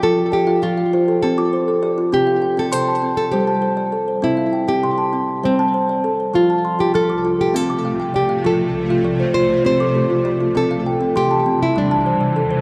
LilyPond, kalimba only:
<<
  \new Staff \with { instrumentName = "Kalimba" } { \time 7/8 \key c \mixolydian \tempo 4 = 100 << { f''8 d''16 f''16 g''16 f''16 c''16 a'16 g'16 f'16 c''16 a'16 g'16 f'16~ | f'16 f''16 g''8 c'''16 a''8. c''16 a''16 c''16 d''8 c''16~ | c''16 f''16 g''8 c'''16 a''8. c''8 c''16 d''8 c''16~ | c''16 a''16 c'''8 f'''16 d'''8. f''8 f''16 g''8 f''16~ |
f''8 r16 f''16 d''16 c''16 d''16 f'16 g'16 a'16 g'16 f'16 g'16 f'16~ | f'16 f''16 g''8 c'''16 a''8. r8 c''16 d''8 c''16 | } \\ { f'8 r16 f'8 r16 f'8 r16 d'''8 r16 d''8 | c'8 r16 c'8 r16 c'8 r4 a'8 | c'8 r16 c'8 r16 c'8 r16 a''8 r16 a'8 | f'8 r16 f'8 r16 f'8 r16 d'''8 r16 d''8 |
f'8 r16 f'8 r16 f'8 r16 d'''8 r16 d''8 | c'8 r16 c'8 r16 c'8 r16 a''8 r16 a'8 | } >> }
  \new Staff \with { instrumentName = "Kalimba" } { \clef bass \time 7/8 \key c \mixolydian f4 f8 r8 c'4. | c4 c8 r8 g4. | c4 c8 r8 g4. | f4 f8 r8 c'4. |
f4 f8 r8 c'4. | c4 c8 r8 g4. | }
>>